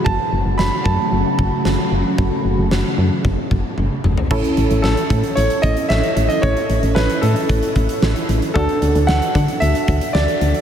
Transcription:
<<
  \new Staff \with { instrumentName = "Grand piano" } { \time 4/4 \key a \lydian \tempo 4 = 113 a''4 b''8 a''2~ a''8~ | a''2. r4 | r4 a'4 cis''8 dis''8 e''8. dis''16 | cis''4 b'8 a'2 r8 |
a'4 fis''4 e''4 d''4 | }
  \new Staff \with { instrumentName = "Analog polysynth" } { \time 4/4 \key a \lydian r1 | r1 | <cis' e' a'>1~ | <cis' e' a'>1 |
<d' fis' a'>1 | }
  \new Staff \with { instrumentName = "String machine" } { \clef bass \time 4/4 \key a \lydian <cis fis a fis'>1~ | <cis fis a fis'>1 | r1 | r1 |
r1 | }
  \new Staff \with { instrumentName = "FM bass" } { \clef bass \time 4/4 \key a \lydian fis,,16 r16 fis,,16 fis,,16 fis,,16 r16 fis,16 r16 fis,,16 r16 fis,,16 r16 fis,,16 r16 fis,,16 r16 | fis,,16 r16 fis,,16 fis,,16 fis,,16 r16 fis,16 r16 fis,,16 r16 fis,,16 r16 fis,,16 r16 fis,,16 r16 | a,,16 r16 a,,16 a,,16 a,,16 r16 a,16 r16 a,,16 r16 a,,16 r16 a,,16 r16 a,,16 r16 | a,,16 r16 a,,16 a,,16 a,,16 r16 a,16 r16 a,,16 r16 a,,16 r16 a,,16 r16 a,,16 r16 |
d,16 r16 d,16 d,16 d,16 r16 d16 r16 d,16 r16 d,16 r16 d,16 r16 d,16 r16 | }
  \new DrumStaff \with { instrumentName = "Drums" } \drummode { \time 4/4 bd4 sn8 bd8 r8 bd8 sn4 | bd4 sn4 bd8 bd8 tommh8 toml16 tomfh16 | <cymc bd>16 hh16 hh16 hh16 sn16 hh16 <hh bd>16 hh16 hh16 hh16 <hh bd>16 hh16 sn16 hh16 hh16 hh16 | <hh bd>16 hh16 hh16 hh16 sn16 hh16 hh16 hh16 <hh bd>16 hh16 <hh bd>16 hh16 sn16 hh16 hh16 hh16 |
<hh bd>16 hh16 hh16 hh16 sn16 hh16 <hh bd>16 hh16 hh16 hh16 <hh bd>16 hh16 sn16 hh16 hh16 hh16 | }
>>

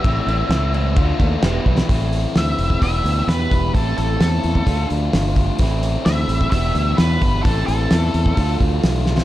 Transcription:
<<
  \new Staff \with { instrumentName = "Lead electric guitar" } { \time 4/4 \key a \minor \tempo 4 = 130 e''2. r4 | r4 e''4 e''4 b'4 | a'8 a'2 r4. | r4 e''4 e''4 b'4 |
a'8 a'2 r4. | }
  \new Staff \with { instrumentName = "Overdriven electric guitar" } { \time 4/4 \key a \minor <e c' e'>8 <e c' e'>8 <e c' e'>8 <e c' e'>8 <f a d'>8 <f a d'>8 <g b e'>8 <g b e'>8 | <e c' e'>2 <g b e'>2 | <e c' e'>2 <f a d'>2 | <e c' e'>2 <g b e'>2 |
<e c' e'>2 <f a d'>2 | }
  \new Staff \with { instrumentName = "Overdriven electric guitar" } { \time 4/4 \key a \minor <a, e a c' e'>8 <a, e a c' e'>8 <a, e a c' e'>8 <a, e a c' e'>8 <d a d' f'>8 <d a d' f'>8 <e, b, e g b e'>8 <e, b, e g b e'>8 | <a, e a c' e'>2 <e, b, e g b e'>2 | <a, e a c' e'>2 <d a d' f'>2 | <a, e a c' e'>2 <e, b, e g b e'>2 |
<a, e a c' e'>2 <d a d' f'>2 | }
  \new Staff \with { instrumentName = "Fingered electric bass" } { \clef bass \time 4/4 \key a \minor a,,8 a,,8 cis,4 d,8 dis,8 e,,8 b,,8 | a,,4 d,8 f,,8 e,,8 d,8 e,8 e,,8 | a,,8 a,,8 e,8 e,8 d,8 d,8 g,,4 | a,,4 d,8 a,,8 e,,8 d,8 e,8 g,,8 |
a,,8 a,,8 e,8 e,8 d,8 d,8 b,,4 | }
  \new DrumStaff \with { instrumentName = "Drums" } \drummode { \time 4/4 <cymc bd>8 cymc8 <cymc sn>8 cymc8 <cymc bd>8 <cymc bd>8 <cymc sn>8 bd16 sn16 | <hho bd>8 hho8 <hho sn>8 hho16 bd16 <hho bd>8 hho8 <hho sn>8 <hho bd>8 | <hho bd>8 hho8 <hho sn>8 hho16 bd16 <hho bd>8 hho8 <hho sn>8 <hho bd>8 | <hho bd>8 hho8 <hho sn>8 hho16 bd16 <hho bd>8 hho8 <hho sn>8 <hho bd>8 |
<hho bd>8 hho8 <hho sn>8 hho16 bd16 <hho bd>8 <hho bd>8 <hho sn>8 sn16 sn16 | }
>>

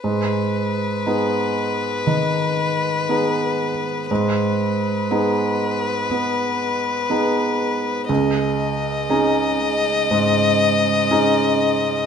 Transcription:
<<
  \new Staff \with { instrumentName = "Violin" } { \time 4/4 \key gis \minor \tempo 4 = 60 b'1 | b'1 | dis''1 | }
  \new Staff \with { instrumentName = "Felt piano" } { \time 4/4 \key gis \minor gis,4 <b dis' gis'>4 dis4 <b dis' gis'>4 | gis,4 <b dis' gis'>4 b4 <b dis' gis'>4 | cis,4 <cis' dis' gis'>4 gis,4 <cis' dis' gis'>4 | }
>>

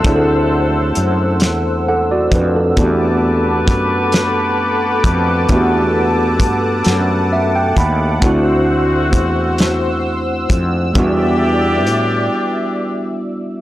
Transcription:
<<
  \new Staff \with { instrumentName = "Analog synth pad" } { \time 6/8 \key e \minor \tempo 4. = 44 << { e'''2. | <a' d'''>2.~ | <a' d'''>2. | e'''2.~ |
e'''2. | } \\ { <c'' fis''>2. | <fis'' a''>2.~ | <fis'' a''>2. | c''2. |
<d'' e''>2. | } >> }
  \new Staff \with { instrumentName = "Horn section" } { \time 6/8 \key e \minor <fis e' a'>2~ <fis e' a'>8 r8 | <fis' g' b'>2.~ | <fis' g' b'>2~ <fis' g' b'>8 r8 | <c a fis'>2~ <c a fis'>8 r8 |
<e d' g'>2~ <e d' g'>8 r8 | }
  \new Staff \with { instrumentName = "Tine electric piano" } { \time 6/8 \key e \minor << { r2 <a' fis''>16 <fis' d''>16 <d' b'>16 <c' a'>16~ | <c' a'>16 r2 r8. | r2 e''16 g''16 b''8 | r2. |
r2. | } \\ { <a c' d' e' gis' a'>2. | <a b d' fis' g'>2. | <a b d' fis' g'>2. | <a c' d' e' fis'>2. |
<g b d' e' fis'>2. | } >> }
  \new Staff \with { instrumentName = "Fretless electric bass" } { \clef bass \time 6/8 \key e \minor d,4 fis,8 e,4 f,8 | e,4 fis,4. f,8 | e,4 g,8 fis,4 dis,8 | d,4 e,4. f,8 |
e,4 a,8 r4. | }
  \new DrumStaff \with { instrumentName = "Drums" } \drummode { \time 6/8 <hh bd>4 hh8 <hh sn>4 <hh bd>8 | <hh bd>4 <hh bd>8 <hh sn>4 <hh bd>8 | <hh bd>4 <hh bd>8 <hh sn>4 <hh bd>8 | <hh bd>4 <hh bd>8 <hh sn>4 <hh bd>8 |
<hh bd>4 hh8 r4. | }
>>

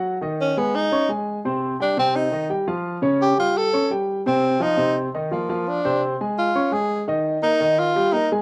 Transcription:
<<
  \new Staff \with { instrumentName = "Grand piano" } { \time 4/4 \key ees \major \tempo 4 = 171 <ges ges' ges''>8 <ees ees' ees''>4 <aes aes' aes''>4 <des' des'' des'''>8 <aes aes' aes''>4 | <c c' c''>4 <g g' g''>8 <c c' c''>4 <ees ees' ees''>8 <g g' g''>8 <f f' f''>8~ | <f f' f''>8 <des des' des''>4 <g g' g''>4 <cis' cis'' cis'''>8 <g g' g''>4 | <c c' c''>4 <f f' f''>8 <c c' c''>4 <ees ees' ees''>8 <f f' f''>8 <f f' f''>8~ |
<f f' f''>8 <c c' c''>4 <aes aes' aes''>4 <des' des'' des'''>8 <aes aes' aes''>4 | <ees ees' ees''>4 <bes bes' bes''>8 <ees ees' ees''>4 <g g' g''>8 <bes bes' bes''>8 <aes aes' aes''>8 | }
  \new Staff \with { instrumentName = "Tenor saxophone" } { \time 4/4 \key ees \major r4 des'8 b8 ees'4 r4 | r4 d'8 c'8 ees'4 r4 | r4 g'8 f'8 a'4 r4 | c'4 ees'4 r4 bes4 |
d'4 r4 f'4 aes'4 | r4 ees'4 f'4 ees'8 r8 | }
>>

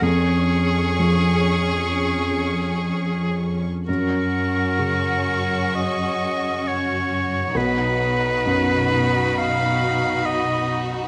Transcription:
<<
  \new Staff \with { instrumentName = "Violin section" } { \time 4/4 \key fis \major \tempo 4 = 65 cis'''1 | cis'''1 | b''1 | }
  \new Staff \with { instrumentName = "Oboe" } { \time 4/4 \key fis \major gis'2.~ gis'8 r8 | ais'2 dis''4 cis''4 | b'2 eis''4 dis''8 r8 | }
  \new Staff \with { instrumentName = "Violin section" } { \time 4/4 \key fis \major gis'1 | fis'1 | fis'1 | }
  \new Staff \with { instrumentName = "Viola section" } { \time 4/4 \key fis \major cis'1 | cis'1 | dis'1 | }
  \new Staff \with { instrumentName = "Cello section" } { \clef bass \time 4/4 \key fis \major eis,1 | fis,1 | b,1 | }
  \new Staff \with { instrumentName = "Felt piano" } { \clef bass \time 4/4 \key fis \major eis,4 eis2. | fis,4 cis2. | b,,4 fis,2. | }
>>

